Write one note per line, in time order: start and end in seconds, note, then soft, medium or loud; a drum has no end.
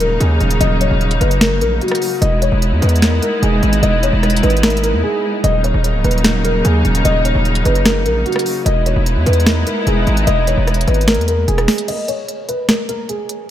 0.00 0.18 D#1 loud
0.00 2.19 C#3 medium
0.00 2.19 F#3 medium
0.00 2.19 A#3 medium
0.00 2.19 D#4 loud
0.00 0.16 A#4 medium
0.00 closed hi-hat medium
0.20 0.40 D#2 loud
0.20 0.58 G#4 medium
0.20 closed hi-hat medium
0.40 0.60 D#1 loud
0.40 closed hi-hat soft
0.51 closed hi-hat medium
0.61 0.90 D#1 loud
0.61 0.76 D#5 loud
0.61 closed hi-hat medium
0.81 0.97 C#5 medium
0.81 closed hi-hat medium
0.91 1.20 D#1 loud
1.01 closed hi-hat soft
1.11 closed hi-hat medium
1.21 1.63 F#1 loud
1.21 1.37 B4 medium
1.21 closed hi-hat medium
1.31 closed hi-hat medium
1.41 1.57 A#4 medium
1.41 finger snap medium
1.41 snare loud
1.41 closed hi-hat medium
1.61 1.80 A#1 loud
1.61 1.77 A#4 medium
1.61 closed hi-hat medium
1.81 2.19 F#4 medium
1.81 closed hi-hat soft
1.88 cross-stick loud
1.88 closed hi-hat medium
1.95 closed hi-hat medium
2.02 open hi-hat medium
2.21 2.51 E1 loud
2.21 5.41 G#3 medium
2.21 5.41 B3 medium
2.21 5.41 D#4 medium
2.21 5.41 E4 medium
2.21 2.37 D#5 loud
2.21 closed hi-hat medium
2.42 2.58 C#5 medium
2.42 closed hi-hat medium
2.52 2.74 E1 loud
2.62 closed hi-hat medium
2.72 2.82 E2 loud
2.82 3.21 E2 loud
2.82 2.98 B4 medium
2.82 closed hi-hat medium
2.89 closed hi-hat medium
2.96 closed hi-hat medium
3.02 3.18 A#4 medium
3.02 finger snap medium
3.02 snare loud
3.02 closed hi-hat medium
3.22 3.38 A#4 medium
3.22 closed hi-hat medium
3.43 3.62 E1 loud
3.43 3.80 G#4 medium
3.43 closed hi-hat medium
3.63 3.82 G#1 loud
3.63 closed hi-hat soft
3.73 closed hi-hat medium
3.83 4.12 E1 loud
3.83 3.98 D#5 loud
3.83 closed hi-hat medium
4.03 4.19 C#5 medium
4.03 closed hi-hat medium
4.13 4.42 E1 loud
4.23 cross-stick medium
4.23 closed hi-hat soft
4.30 closed hi-hat medium
4.36 closed hi-hat medium
4.43 4.95 G#1 loud
4.43 4.59 B4 medium
4.43 closed hi-hat soft
4.50 closed hi-hat soft
4.57 closed hi-hat medium
4.63 4.79 A#4 medium
4.63 finger snap medium
4.63 snare loud
4.63 closed hi-hat medium
4.70 closed hi-hat medium
4.77 closed hi-hat medium
4.83 4.99 A#4 medium
4.83 closed hi-hat medium
4.94 5.03 E2 loud
5.03 5.41 G#4 medium
5.44 5.73 D#1 loud
5.44 8.63 C#3 medium
5.44 8.63 F#3 medium
5.44 8.63 A#3 medium
5.44 8.63 D#4 loud
5.44 5.60 D#5 loud
5.44 closed hi-hat medium
5.64 5.80 C#5 medium
5.64 closed hi-hat medium
5.74 5.96 D#1 loud
5.84 closed hi-hat medium
5.94 6.04 C#1 loud
6.04 6.62 D#1 loud
6.04 6.20 B4 medium
6.04 closed hi-hat medium
6.11 closed hi-hat medium
6.18 closed hi-hat medium
6.24 6.40 A#4 medium
6.24 finger snap medium
6.24 snare loud
6.24 closed hi-hat medium
6.45 6.60 A#4 medium
6.45 closed hi-hat medium
6.65 6.84 D#2 loud
6.65 7.03 G#4 medium
6.65 closed hi-hat medium
6.85 7.04 D#1 loud
6.85 closed hi-hat soft
6.95 closed hi-hat medium
7.05 7.34 D#1 loud
7.05 7.21 D#5 loud
7.05 closed hi-hat medium
7.25 7.41 C#5 medium
7.25 closed hi-hat medium
7.35 7.64 D#1 loud
7.45 closed hi-hat soft
7.55 closed hi-hat medium
7.65 8.07 F#1 loud
7.65 7.81 B4 medium
7.65 closed hi-hat medium
7.75 closed hi-hat medium
7.85 8.01 A#4 medium
7.85 finger snap medium
7.85 snare loud
7.85 closed hi-hat medium
8.06 8.25 A#1 loud
8.06 8.21 A#4 medium
8.06 closed hi-hat medium
8.26 8.64 F#4 medium
8.26 closed hi-hat soft
8.32 cross-stick loud
8.32 closed hi-hat medium
8.39 closed hi-hat medium
8.46 open hi-hat medium
8.66 8.95 E1 loud
8.66 11.85 G#3 medium
8.66 11.85 B3 medium
8.66 11.85 D#4 medium
8.66 11.85 E4 medium
8.66 8.82 D#5 loud
8.66 closed hi-hat medium
8.86 9.02 C#5 medium
8.86 closed hi-hat medium
8.96 9.18 E1 loud
9.06 closed hi-hat medium
9.16 9.26 E2 loud
9.26 9.65 E2 loud
9.26 9.42 B4 medium
9.26 closed hi-hat medium
9.33 closed hi-hat medium
9.40 closed hi-hat medium
9.46 9.62 A#4 medium
9.46 finger snap medium
9.46 snare loud
9.46 closed hi-hat medium
9.67 9.83 A#4 medium
9.67 closed hi-hat medium
9.87 10.06 E1 loud
9.87 10.25 G#4 medium
9.87 closed hi-hat medium
10.07 10.26 G#1 loud
10.07 closed hi-hat soft
10.17 closed hi-hat medium
10.27 10.56 E1 loud
10.27 10.43 D#5 loud
10.27 closed hi-hat medium
10.47 10.63 C#5 medium
10.47 closed hi-hat medium
10.57 10.86 E1 loud
10.67 cross-stick medium
10.67 closed hi-hat soft
10.74 closed hi-hat medium
10.81 closed hi-hat medium
10.88 11.19 G#1 loud
10.88 11.03 B4 medium
10.88 closed hi-hat soft
10.94 closed hi-hat soft
11.01 closed hi-hat medium
11.08 11.23 A#4 medium
11.08 finger snap medium
11.08 snare loud
11.08 closed hi-hat medium
11.14 11.46 E2 loud
11.14 closed hi-hat medium
11.21 closed hi-hat medium
11.28 11.43 A#4 medium
11.28 closed hi-hat medium
11.48 11.67 E1 loud
11.48 11.86 G#4 medium
11.48 closed hi-hat medium
11.58 cross-stick loud
11.58 closed hi-hat soft
11.68 finger snap medium
11.68 snare medium
11.68 closed hi-hat soft
11.68 open hi-hat medium
11.78 closed hi-hat medium
11.88 12.04 D#5 loud
11.88 closed hi-hat medium
11.88 crash medium
12.08 12.24 C#5 medium
12.08 closed hi-hat medium
12.28 closed hi-hat medium
12.49 12.64 B4 medium
12.49 closed hi-hat medium
12.69 12.85 A#4 medium
12.69 finger snap medium
12.69 snare loud
12.69 closed hi-hat medium
12.89 13.05 A#4 medium
12.89 closed hi-hat medium
13.09 13.47 G#4 medium
13.09 closed hi-hat medium
13.29 closed hi-hat medium